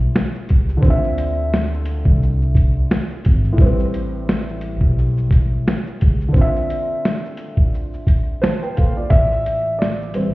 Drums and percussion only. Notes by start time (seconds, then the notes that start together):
0.15 snare, shaker
0.34 shaker
0.49 kick, closed hi-hat, shaker
0.69 shaker
0.83 kick, shaker
1.04 shaker
1.18 closed hi-hat, shaker
1.54 snare, shaker
1.74 shaker
1.85 closed hi-hat, shaker
2.05 kick
2.23 shaker
2.42 shaker
2.55 kick, closed hi-hat, shaker
2.91 snare, shaker
3.10 shaker
3.25 kick, closed hi-hat, shaker
3.44 shaker
3.58 kick, shaker
3.79 shaker
3.94 closed hi-hat, shaker
4.29 snare, shaker
4.49 shaker
4.61 closed hi-hat, shaker
4.81 kick
4.98 shaker
5.17 shaker
5.31 kick, closed hi-hat, shaker
5.67 snare, shaker
5.86 shaker
6.01 kick, closed hi-hat, shaker
6.21 shaker
6.34 kick, shaker
6.56 shaker
6.70 closed hi-hat, shaker
7.05 snare, shaker
7.25 shaker
7.37 closed hi-hat, shaker
7.57 kick
7.74 shaker
7.93 shaker
8.07 kick, closed hi-hat, shaker
8.43 snare, shaker
8.62 shaker
8.77 kick, closed hi-hat, shaker
9.10 kick, shaker
9.32 shaker
9.46 closed hi-hat, shaker
9.82 snare, shaker
10.02 shaker
10.14 closed hi-hat, shaker